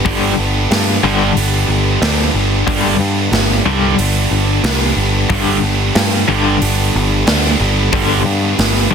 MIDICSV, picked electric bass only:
0, 0, Header, 1, 2, 480
1, 0, Start_track
1, 0, Key_signature, 1, "major"
1, 0, Tempo, 656455
1, 40, Time_signature, 4, 2, 24, 8
1, 6542, End_track
2, 0, Start_track
2, 0, Title_t, "Picked electric bass"
2, 0, Program_c, 0, 34
2, 42, Note_on_c, 0, 31, 88
2, 242, Note_off_c, 0, 31, 0
2, 281, Note_on_c, 0, 31, 80
2, 481, Note_off_c, 0, 31, 0
2, 517, Note_on_c, 0, 43, 84
2, 719, Note_off_c, 0, 43, 0
2, 755, Note_on_c, 0, 31, 87
2, 958, Note_off_c, 0, 31, 0
2, 995, Note_on_c, 0, 31, 77
2, 1198, Note_off_c, 0, 31, 0
2, 1230, Note_on_c, 0, 31, 76
2, 1435, Note_off_c, 0, 31, 0
2, 1474, Note_on_c, 0, 38, 100
2, 1678, Note_off_c, 0, 38, 0
2, 1712, Note_on_c, 0, 31, 86
2, 1916, Note_off_c, 0, 31, 0
2, 1958, Note_on_c, 0, 31, 86
2, 2160, Note_off_c, 0, 31, 0
2, 2191, Note_on_c, 0, 43, 81
2, 2396, Note_off_c, 0, 43, 0
2, 2426, Note_on_c, 0, 31, 94
2, 2633, Note_off_c, 0, 31, 0
2, 2672, Note_on_c, 0, 36, 91
2, 2876, Note_off_c, 0, 36, 0
2, 2911, Note_on_c, 0, 31, 80
2, 3116, Note_off_c, 0, 31, 0
2, 3151, Note_on_c, 0, 31, 76
2, 3356, Note_off_c, 0, 31, 0
2, 3390, Note_on_c, 0, 36, 91
2, 3595, Note_off_c, 0, 36, 0
2, 3630, Note_on_c, 0, 31, 87
2, 3835, Note_off_c, 0, 31, 0
2, 3874, Note_on_c, 0, 31, 85
2, 4078, Note_off_c, 0, 31, 0
2, 4110, Note_on_c, 0, 31, 85
2, 4315, Note_off_c, 0, 31, 0
2, 4353, Note_on_c, 0, 43, 96
2, 4557, Note_off_c, 0, 43, 0
2, 4595, Note_on_c, 0, 31, 83
2, 4798, Note_off_c, 0, 31, 0
2, 4836, Note_on_c, 0, 31, 85
2, 5039, Note_off_c, 0, 31, 0
2, 5083, Note_on_c, 0, 31, 88
2, 5284, Note_off_c, 0, 31, 0
2, 5316, Note_on_c, 0, 38, 84
2, 5519, Note_off_c, 0, 38, 0
2, 5558, Note_on_c, 0, 31, 85
2, 5761, Note_off_c, 0, 31, 0
2, 5800, Note_on_c, 0, 31, 79
2, 6002, Note_off_c, 0, 31, 0
2, 6034, Note_on_c, 0, 43, 76
2, 6239, Note_off_c, 0, 43, 0
2, 6278, Note_on_c, 0, 31, 93
2, 6482, Note_off_c, 0, 31, 0
2, 6520, Note_on_c, 0, 36, 84
2, 6542, Note_off_c, 0, 36, 0
2, 6542, End_track
0, 0, End_of_file